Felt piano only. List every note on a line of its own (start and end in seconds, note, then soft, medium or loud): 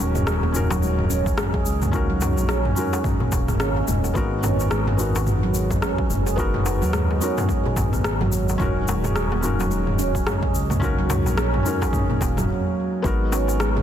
0.00 0.50 C#4 medium
0.00 0.51 D#4 medium
0.00 0.52 F#4 medium
0.00 0.52 A#4 loud
0.52 1.90 C#4 medium
0.52 1.90 D#4 medium
0.52 1.91 F#4 medium
0.52 1.92 A#4 medium
1.91 2.73 C#4 medium
1.91 2.74 D#4 medium
1.91 2.74 F#4 medium
1.95 2.75 A#4 loud
2.75 4.12 C#4 medium
2.75 4.13 D#4 medium
2.75 4.13 F#4 medium
2.75 4.14 A#4 medium
4.14 4.95 B3 medium
4.14 4.96 D#4 medium
4.14 4.97 F#4 medium
4.14 4.97 A#4 loud
4.97 6.34 B3 medium
4.97 6.35 D#4 medium
4.97 6.35 F#4 medium
5.01 6.36 A#4 medium
6.36 7.17 B3 loud
6.36 7.18 D#4 medium
6.36 7.19 F#4 medium
6.36 7.19 A#4 loud
7.20 8.57 B3 medium
7.20 8.57 D#4 medium
7.20 8.58 F#4 medium
7.20 8.58 A#4 medium
8.58 9.39 C#4 loud
8.58 9.40 D#4 medium
8.58 9.41 F#4 medium
8.62 9.42 A#4 loud
9.41 10.78 C#4 medium
9.41 10.79 D#4 medium
9.41 10.80 F#4 medium
9.45 10.80 A#4 medium
10.80 11.61 C#4 loud
10.80 11.62 D#4 medium
10.80 11.63 F#4 medium
10.84 11.64 A#4 loud
11.63 12.45 C#4 medium
11.63 12.46 D#4 medium
11.63 12.47 F#4 medium
11.67 12.47 A#4 medium
13.02 13.82 B3 loud
13.02 13.82 D#4 medium
13.02 13.82 F#4 medium
13.02 13.82 A#4 loud